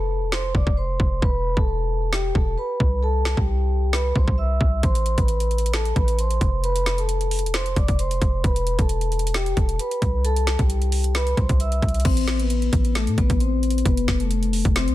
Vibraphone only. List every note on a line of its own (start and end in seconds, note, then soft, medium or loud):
0.00 0.29 A4 medium
0.00 0.29 A5 medium
0.32 0.51 C5 medium
0.32 0.51 C6 medium
0.55 0.73 D5 medium
0.55 0.74 D6 medium
0.77 1.20 C5 medium
0.77 1.20 C6 medium
1.22 1.55 B4 medium
1.22 1.55 B5 medium
1.57 2.09 A4 medium
1.57 2.10 A5 medium
2.13 2.31 G4 medium
2.13 2.32 G5 medium
2.35 2.54 A4 medium
2.35 2.54 A5 medium
2.58 3.00 B4 medium
2.58 3.00 B5 medium
3.03 3.35 A4 loud
3.03 3.36 A5 medium
3.37 3.90 G4 medium
3.37 3.90 G5 medium
3.93 4.12 B4 medium
3.93 4.12 B5 medium
4.16 4.34 C5 medium
4.16 4.35 C6 medium
4.38 4.80 E5 medium
4.38 4.81 E6 medium
4.83 5.16 C5 loud
4.83 5.16 C6 medium
5.18 5.70 B4 medium
5.18 5.71 B5 medium
5.73 5.92 A4 medium
5.73 5.93 A5 medium
5.96 6.15 B4 medium
5.96 6.15 B5 medium
6.19 6.61 C5 medium
6.19 6.61 C6 medium
6.64 6.96 B4 loud
6.64 6.97 B5 medium
6.98 7.51 A4 medium
6.98 7.51 A5 medium
7.54 7.73 C5 medium
7.54 7.73 C6 medium
7.77 7.95 D5 medium
7.77 7.96 D6 medium
7.99 8.42 C5 medium
7.99 8.42 C6 medium
8.44 8.77 B4 medium
8.44 8.77 B5 medium
8.79 9.31 A4 medium
8.79 9.31 A5 medium
9.34 9.53 G4 medium
9.34 9.54 G5 medium
9.57 9.76 A4 medium
9.57 9.76 A5 medium
9.79 10.22 B4 medium
9.79 10.22 B5 medium
10.24 10.57 A4 loud
10.24 10.57 A5 medium
10.59 11.11 G4 medium
10.59 11.12 G5 medium
11.15 11.34 B4 medium
11.15 11.34 B5 medium
11.37 11.56 C5 medium
11.37 11.57 C6 medium
11.60 12.02 E5 medium
11.60 12.03 E6 medium
12.05 12.37 C4 loud
12.05 12.38 C5 medium
12.40 12.92 B3 medium
12.40 12.92 B4 medium
12.95 13.14 A3 medium
12.95 13.14 A4 medium
13.18 13.37 B3 medium
13.18 13.37 B4 medium
13.40 13.83 C4 medium
13.40 13.83 C5 medium
13.85 14.18 B3 loud
13.85 14.18 B4 medium
14.20 14.72 A3 medium
14.20 14.73 A4 medium
14.76 14.95 C4 medium
14.76 14.95 C5 medium